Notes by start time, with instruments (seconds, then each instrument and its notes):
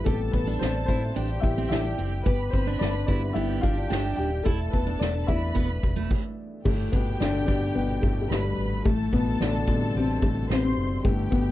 0.04 fingered electric bass A1, upright piano C3 G3 A3 B3 A4, steel-string acoustic guitar G4, violin section A4 A5, kick, ride
0.31 fingered electric bass A1, upright piano B3 B4, kick, ride
0.47 steel-string acoustic guitar D4
0.59 fingered electric bass A1, upright piano C4 C5, snare, ride
0.86 fingered electric bass A2, upright piano C4 C5, steel-string acoustic guitar E4, kick, ride
1.03 ride
1.16 fingered electric bass A1, steel-string acoustic guitar D4, violin section G4 G5, ride
1.40 fingered electric bass A1, upright piano C3 G3 B3 E4 E5, kick, ride
1.58 steel-string acoustic guitar C4
1.69 fingered electric bass A1, steel-string acoustic guitar D4, upright piano E4 E5, snare
1.98 fingered electric bass F#1, steel-string acoustic guitar C4, ride
2.23 fingered electric bass G1, upright piano B3 B4, steel-string acoustic guitar G4, violin section B4 B5, kick, ride
2.50 fingered electric bass G1, upright piano C4 C5, kick, ride
2.67 steel-string acoustic guitar D4
2.79 fingered electric bass G1, upright piano D4 D5, snare, ride
3.06 fingered electric bass G2, upright piano D3 G3 B3 D4 D5, steel-string acoustic guitar E4, kick, ride
3.33 fingered electric bass G1, steel-string acoustic guitar B3, upright piano E4 E5, violin section G4 G5
3.61 fingered electric bass G1, steel-string acoustic guitar D4, upright piano F4 F5, kick, ride
3.77 ride
3.88 fingered electric bass G1, steel-string acoustic guitar D4, upright piano G4 G5, snare, ride
4.16 fingered electric bass D#1, upright piano G4 G5, ride
4.43 fingered electric bass E1, upright piano A3 A4, steel-string acoustic guitar E4, violin section A4 A5, kick, ride
4.70 fingered electric bass E1, upright piano B3 B4, kick, ride
4.87 steel-string acoustic guitar D4
4.99 fingered electric bass E1, upright piano D4 D5, snare, ride
5.27 fingered electric bass E2, upright piano E3 A3 B3 E4 E5, steel-string acoustic guitar E4, violin section B4 B5, kick, ride
5.43 ride
5.55 fingered electric bass E1, steel-string acoustic guitar B3, kick, ride
5.83 fingered electric bass E1, kick, ride
5.96 steel-string acoustic guitar A3, ride
6.11 kick, crash
6.65 fingered electric bass G1, upright piano A2 A3, violin section G4 G5, kick, crash
6.92 fingered electric bass G1, upright piano B2 B3, kick, ride
7.20 fingered electric bass G1, upright piano D3 D4, snare, ride
7.46 fingered electric bass G2, upright piano D3 G3 B3 D4, kick, ride
7.75 fingered electric bass G1, upright piano B2 B3, ride
8.02 fingered electric bass G1, upright piano A2 A3, kick, ride
8.22 upright piano A3
8.30 fingered electric bass G1, upright piano G2 G3, violin section B4 B5, snare, ride
8.58 fingered electric bass G#1, ride
8.85 fingered electric bass A1, upright piano A2 A3, violin section A4 A5, kick, ride
9.13 fingered electric bass A1, upright piano B2 B3, kick, ride
9.40 fingered electric bass A1, upright piano D3 D4, snare, ride
9.68 fingered electric bass A2, upright piano B2 C3 D3 G3 D4, kick, ride
9.82 ride
9.95 fingered electric bass A1, upright piano C3 C4, ride
10.09 snare
10.22 fingered electric bass A1, upright piano A2 A3, kick, ride
10.50 fingered electric bass A1, upright piano C3 C4, violin section C5 C6, snare, ride
10.56 upright piano B3
10.64 upright piano C3 C4
10.77 fingered electric bass F#1, ride
11.04 fingered electric bass G1, upright piano A2 D3 G3 A3 B3, violin section G4 G5, kick, ride
11.31 fingered electric bass G1, upright piano B2 B3, kick, ride